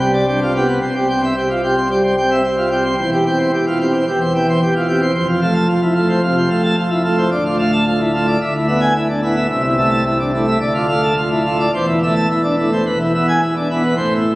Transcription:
pipe organ
Already playing: C2 C3
0.00 G3 G5
0.13 D5
0.27 D4 G4
0.42 F4
0.56 B3 G4
0.68 B4
0.82 C2 C3 C5
0.95 G4
1.09 C4 G5
1.24 E5
1.37 G4
1.50 F4
1.64 C4 G4
1.77 C5
1.90 G3 G4
2.03 C5
2.17 C4 G5
2.31 E5
2.44 G4
2.57 F4
2.71 C4 G4
2.85 C5
2.98 E1 E2 C5
3.12 G4
3.26 C4 G5
3.39 C5
3.53 G4
3.67 F4
3.80 C4 G4
3.94 C5
4.07 E1 E2 G4
4.21 C5
4.35 E3 G5
4.49 C5
4.62 G4
4.76 F4
4.88 C4 G4
5.02 C5
5.15 F1 F2 C5
5.28 F4
5.41 A3 F5
5.55 A5
5.68 F4
5.82 E4
5.94 A3 F4
6.09 C5
6.23 C3 F4
6.37 C5
6.50 A3 F5
6.63 A5
6.77 F4
6.90 E4
7.04 A3 F4
7.18 C5
7.31 D1 D2 D5
7.45 F4
7.58 A3 F5
7.72 A5
7.87 F4
8.00 E4
8.14 A3 F4
8.27 D5
8.41 D1 D2 E5
8.54 E4
8.68 B3 E5
8.81 G#5
8.95 E4
9.09 D4
9.22 B3 E4
9.36 E5
9.49 C1 C2 E5
9.63 E4
9.78 A3 E5
9.91 A5
10.06 E4
10.20 D4
10.34 A3 E4
10.48 E5
10.60 D1 D2 D5
10.74 F4
10.88 A3 F5
11.03 A5
11.17 F4
11.31 E4
11.45 A3 F4
11.60 D5
11.74 E1 E2 C5
11.88 E4
12.03 A3 E5
12.16 A5
12.30 E4
12.44 D4
12.58 A3 E4
12.73 C5
12.86 E1 E2 B4
13.00 E4
13.14 B3 E5
13.29 G#5
13.42 E4
13.56 D4
13.70 B3 E4
13.84 B4
13.97 A1 A2 C5
14.15 E4

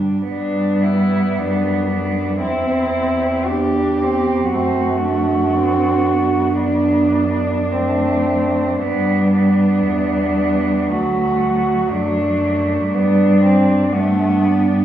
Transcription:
cello
Already playing: G2 G3 D4
0.28 G2 G3 B3 D4
0.83 E4
1.37 F#2 D4
1.90 D4
2.40 E2 C4 E4
3.47 B3 D4 G4
4.03 C4
4.52 F#2 A3 C4 F#4
5.04 D4
5.57 C4
6.11 B3
6.64 D4
7.72 A3 C4
8.78 G2 G3 B3 D4
9.34 B3
9.88 E2 G3
10.91 D2 F#3 A3 F#4
11.44 F#3
11.91 F#2 A3 D4
12.90 G2 G3 D4
12.95 B3
13.43 C4
13.91 A3 B3
13.96 D4
14.45 B3

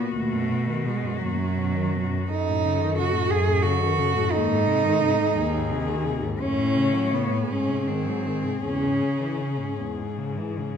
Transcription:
cello
Already playing: A#2 B3 F#4
0.14 D#2 B2 A3
0.33 F#2
0.51 B2
0.67 D#3
0.85 B2 G#3
1.03 F#2
1.19 D#2 F#2 F#3
1.39 F#2
1.57 B2
1.74 D#3
1.93 B2
2.12 F#2
2.29 F#2 D#4 A4
2.48 A2
2.66 C#3
2.81 D#3
2.98 C#3 F#4
3.15 A2
3.30 F#2 G#4
3.48 A2
3.63 C#3 F#4
3.82 D#3
3.99 C#3
4.17 A2
4.31 D#2 G#2 D#4
4.51 G#2
4.67 C3
4.84 D#3
5.02 C3
5.19 G#2
5.35 D#2 G#4
5.55 G#2
5.71 C3
5.88 D#3
6.06 C3
6.23 G#2
6.40 F#2 A2 C#4 C#5
6.57 A2
6.76 C#3
6.94 F#3
7.12 C#3 B3
7.31 A2
7.49 G#2 C#4 G#4
7.68 C3
7.87 D#3 C4
8.07 F#3
8.26 D#3
8.45 C3
8.64 E2 C#3 C#4
8.83 G#2
9.03 C#3
9.21 E3
9.40 C#3
9.59 G#2
9.79 E2 G#2
9.98 G#2
10.18 C#3
10.39 E3
10.58 C#3

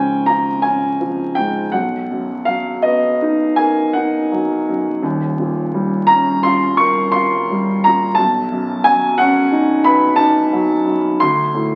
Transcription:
grand piano
Already playing: C#2 G#2 F3 C4 C#4 G5 G#5
0.26 F4 A#5
0.62 C#4 G#5
1.01 F3
1.35 G#2 G5
1.72 B1 F#5
2.11 F#2
2.45 F#3 F5
2.82 B3 D#5
3.22 D#4
3.56 A#4 G#5
3.93 D#4 F#5
4.32 F#3
4.69 F#2
5.02 D#1 D#2
5.39 A#2
5.74 G3
6.07 C#4 A#5
6.43 F4 C6
6.77 A#4 C#6
7.12 F4 C6
7.51 G3
7.84 A#2 A#5
8.15 B1 A5
8.52 F#2
8.84 F#3 G#5
9.18 C#4 F#5
9.52 D#4
9.84 B4 B5
10.16 D#4 A5
10.53 F#3
10.86 F#2
11.20 D2 C6
11.54 A2

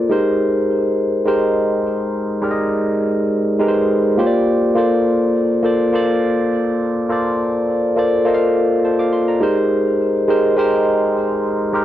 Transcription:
tine electric piano
Already playing: A#3 F4 A4 C5 D5
0.09 G#3 D#4 G4 A#4 C5
1.25 G#3 D#4 G4 A#4 C5
2.42 G#3 D#4 G4 A#4 D5
2.51 D#5
3.59 G#3 D#4 G4 A#4 B4
3.68 C5
4.17 A#3 F4 G4 C5 C#5
4.27 D5
4.75 A#3 F4 A4 C5 D5
5.62 A#3 F4 A4 C5 D5
5.93 A#3 F4 A4 C5 D5
7.09 A#3 F4 A4 C5 D5
7.96 A#3 F4 A4 C5 D5
8.25 A#3 F4 A4 C5 D#5
8.34 F5
8.85 C5 A5
8.99 F5 D6
9.13 C6
9.28 D5 A#5
9.40 G#3 D#4 G4 A#4 C5
10.28 G#3 D#4 G4 A#4 C5
10.56 G#3 D#4 G4 A#4 C5
11.72 G#3 D#4 G4 A#4 C5

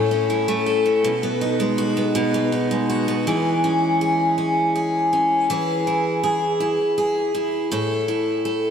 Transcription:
steel-string acoustic guitar
Already playing: A2 A3 E4 A4
0.11 C#4
0.30 E4
0.48 A3
0.66 A4
0.86 C#4
1.04 B2
1.23 B3
1.41 D#4
1.60 G#3
1.78 F#4
1.97 B3
2.15 B2
2.34 B3
2.52 D#4
2.71 G#3
2.90 F#4
3.08 B3
3.27 E3 G#4
3.64 C#4
4.01 G#4
4.38 C#4
4.76 G#4
5.13 C#4
5.50 E3 G#4
5.87 E4
6.24 G#4
6.60 E4
6.98 G#4
7.35 E4
7.72 A2 A4
8.08 E4
8.45 A4

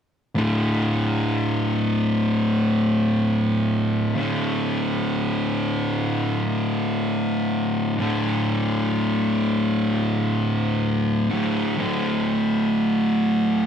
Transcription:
distorted electric guitar
0.35 D2 A2 D3
4.16 D2 A2
4.20 D3
7.98 D2 A2 D3
11.30 A2 D3
11.35 D2
11.77 D2 A2 D3

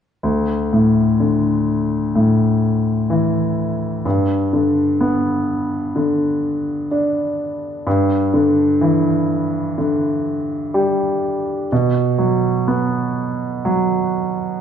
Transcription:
grand piano
0.23 D2
0.73 A2
1.20 D3
2.15 A2
3.10 E3
4.05 G2
4.53 D3
5.01 B3
5.96 D3
6.91 D4
7.87 G2
8.34 D3
8.81 E3
9.78 D3
10.74 G3
11.72 B2
12.18 F#3
12.68 B3
13.65 F#3

